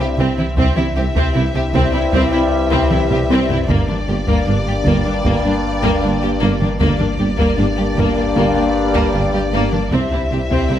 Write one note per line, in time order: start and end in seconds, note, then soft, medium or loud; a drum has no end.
0.00 0.57 C2 medium
0.00 0.41 G2 medium
0.00 0.41 G3 medium
0.00 0.40 C4 medium
0.00 0.08 C4 medium
0.00 0.40 E4 medium
0.00 0.57 E5 medium
0.18 0.26 C2 medium
0.18 0.26 C3 medium
0.18 0.36 C4 medium
0.18 0.37 C4 medium
0.37 0.46 C3 soft
0.37 0.46 C4 medium
0.37 0.45 E4 soft
0.37 taiko mid soft
0.57 0.65 C2 medium
0.57 3.70 C2 medium
0.57 3.65 G2 medium
0.57 0.65 C3 medium
0.57 3.65 G3 medium
0.57 3.65 C4 medium
0.57 0.75 C4 medium
0.57 0.76 C4 medium
0.57 3.65 E4 medium
0.57 3.65 E5 medium
0.57 taiko medium
0.76 0.84 C3 medium
0.76 0.86 C4 soft
0.76 0.84 E4 medium
0.76 taiko mid soft
0.96 1.04 C2 medium
0.96 1.04 C3 medium
0.96 1.05 C4 medium
0.96 1.03 G4 soft
1.15 1.23 C3 medium
1.15 1.34 C4 medium
1.15 taiko medium
1.35 1.43 C2 medium
1.35 1.43 C3 medium
1.35 1.44 C4 soft
1.35 1.43 E4 medium
1.54 1.62 C3 medium
1.54 1.63 C4 soft
1.54 1.62 G4 medium
1.74 1.82 C2 medium
1.74 1.82 C3 medium
1.74 1.92 C4 medium
1.74 taiko medium
1.93 2.01 C3 medium
1.93 2.02 C4 medium
1.93 2.01 E4 medium
2.12 2.20 C2 medium
2.12 2.21 C2 medium
2.12 2.21 C3 medium
2.12 2.31 C4 medium
2.12 taiko medium
2.32 2.41 C3 medium
2.32 2.41 C4 medium
2.32 2.40 E4 medium
2.71 2.79 C3 medium
2.71 2.89 C4 medium
2.71 2.90 C4 medium
2.71 taiko medium
2.91 2.99 C2 medium
2.91 2.99 C3 medium
2.91 2.99 C4 medium
2.91 2.99 E4 medium
2.91 taiko mid medium
3.11 3.18 C3 medium
3.11 3.18 C4 medium
3.11 3.19 G4 medium
3.11 taiko low-mid medium
3.30 3.38 C2 medium
3.30 3.38 C3 medium
3.30 3.48 C4 medium
3.30 taiko high medium
3.49 3.57 C3 medium
3.49 3.58 C4 medium
3.49 3.57 E4 medium
3.49 taiko low medium
3.68 6.79 G1 medium
3.68 3.77 G1 medium
3.68 6.76 G2 medium
3.68 3.77 G2 medium
3.68 6.76 G3 medium
3.68 6.76 A#3 medium
3.68 3.87 A#3 medium
3.68 6.76 D4 medium
3.68 6.79 D5 medium
3.68 taiko medium
3.88 3.96 G2 medium
3.88 3.97 A#3 soft
3.88 3.96 D4 medium
3.88 taiko mid soft
4.07 4.16 G1 medium
4.07 4.15 G2 medium
4.07 4.17 A#3 medium
4.07 4.15 G4 medium
4.27 4.35 G2 medium
4.27 4.45 A#3 medium
4.27 4.46 A#3 medium
4.27 taiko medium
4.47 4.55 G1 medium
4.47 4.55 G2 medium
4.47 4.55 A#3 medium
4.47 4.55 D4 medium
4.66 4.74 G2 medium
4.66 4.74 A#3 soft
4.66 4.74 G4 medium
4.86 4.94 G1 medium
4.86 4.93 G2 medium
4.86 5.04 A#3 medium
4.86 taiko medium
5.05 5.13 G2 medium
5.05 5.13 A#3 medium
5.05 5.14 D4 medium
5.25 5.33 G1 medium
5.25 5.33 G2 medium
5.25 5.43 A#3 medium
5.25 taiko medium
5.45 5.52 G2 medium
5.45 5.52 A#3 medium
5.45 5.52 D4 medium
5.83 5.91 G2 medium
5.83 6.01 A#3 medium
5.83 taiko medium
6.02 6.10 G1 medium
6.02 6.11 G1 medium
6.02 6.11 G2 medium
6.02 6.11 A#3 medium
6.02 6.10 D4 medium
6.22 6.30 G2 medium
6.22 6.31 A#3 medium
6.22 6.30 G4 medium
6.41 6.49 G1 medium
6.41 6.50 G1 medium
6.41 6.49 G2 medium
6.41 6.59 A#3 medium
6.41 6.60 A#3 medium
6.61 6.69 G2 medium
6.61 6.70 A#3 medium
6.61 6.69 D4 medium
6.61 taiko mid soft
6.80 9.94 G1 medium
6.80 6.88 G1 medium
6.80 6.89 G1 medium
6.80 6.88 G2 medium
6.80 9.75 G2 medium
6.80 9.75 G3 medium
6.80 6.98 A#3 medium
6.80 9.74 A#3 medium
6.80 6.99 A#3 medium
6.80 9.74 D4 medium
6.80 9.88 D5 medium
6.80 taiko medium
7.00 7.08 G2 medium
7.00 7.09 A#3 medium
7.00 7.07 D4 medium
7.00 taiko mid soft
7.19 7.27 G1 medium
7.19 7.27 G2 medium
7.19 7.28 A#3 soft
7.19 7.27 G4 soft
7.38 7.47 G2 medium
7.38 7.56 A#3 medium
7.38 7.58 A#3 medium
7.38 taiko medium
7.58 7.66 G1 medium
7.58 7.66 G2 medium
7.58 7.67 A#3 medium
7.58 7.66 D4 medium
7.77 7.85 G2 medium
7.77 7.86 A#3 soft
7.77 7.85 G4 soft
7.97 8.05 G1 medium
7.97 8.05 G2 medium
7.97 8.15 A#3 medium
7.97 8.16 A#3 medium
7.97 taiko medium
8.17 8.24 G2 medium
8.17 8.25 A#3 medium
8.17 8.24 D4 medium
8.35 8.44 G1 medium
8.35 8.44 G2 medium
8.35 8.54 A#3 medium
8.35 taiko medium
8.55 8.64 G2 medium
8.55 8.63 A#3 medium
8.55 8.63 D4 medium
8.94 9.03 G2 medium
8.94 9.13 A#3 medium
8.94 taiko medium
9.14 9.22 G1 medium
9.14 9.22 G2 medium
9.14 9.22 A#3 medium
9.14 9.22 D4 medium
9.33 9.42 G2 medium
9.33 9.41 A#3 medium
9.33 9.42 G4 medium
9.53 9.61 G1 medium
9.53 9.61 G2 medium
9.53 9.71 A#3 medium
9.53 9.72 A#3 medium
9.73 9.81 G2 medium
9.73 9.81 A#3 medium
9.73 9.81 D4 medium
9.73 taiko mid soft
9.91 10.79 C2 medium
9.91 10.00 C2 medium
9.91 10.79 G2 medium
9.91 10.00 C3 medium
9.91 10.79 G3 medium
9.91 10.79 C4 medium
9.91 10.11 C4 medium
9.91 10.79 E4 medium
9.91 10.79 E5 medium
9.91 taiko medium
10.12 10.19 C3 medium
10.12 10.20 C4 medium
10.12 10.20 E4 medium
10.31 10.39 C2 medium
10.31 10.40 C2 soft
10.31 10.39 C3 medium
10.31 10.40 C4 medium
10.31 10.40 G4 soft
10.51 10.58 C3 medium
10.51 10.69 C4 medium
10.51 taiko medium
10.70 10.78 C2 medium
10.70 10.78 C3 medium
10.70 10.78 C4 medium
10.70 10.79 E4 medium